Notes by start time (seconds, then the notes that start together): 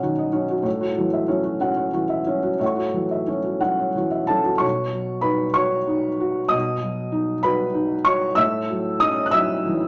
Already playing: B2 F#3 C#4 F#4 C#5 D#5 F#5
0.03 D#3 F#4
0.19 D#5
0.33 F#3 C#4 C#5
0.50 F#4
0.63 A2 C#5
0.81 F#4
0.97 E3 F#3
1.13 E5
1.28 F#3 C#4 C#5
1.44 F#4
1.61 F#3 C#4 F#5
1.77 C#5
1.94 E3 F#4
2.09 E5
2.27 F#3 C#4 C#5
2.43 F#4
2.59 A2 C#5 E5 F#5
2.66 C#6
2.76 F#4
2.94 E3 F#3
3.11 E5
3.27 F#3 C#4 C#5
3.44 F#4
3.61 F#3 C#4 F#4 F#5
3.79 C#5
3.95 E3 F#4
4.11 E5
4.27 F#3 C#4 A4 C#5 A5
4.45 F#4
4.58 B2 C#5 C#6
4.92 F#3
5.21 D#4 B4 B5
5.54 F#4 C#5 C#6
5.87 D#4
6.20 F#4
6.49 B2 D#5 D#6
6.81 F#3
7.12 D#4
7.43 F#4 B4 B5
7.74 D#4
8.05 F#4 C#5 C#6
8.35 A2 E5 E6
8.70 F#3
9.00 C#4 D#5 D#6
9.26 F#6
9.31 F#3 E5 E6
9.66 E3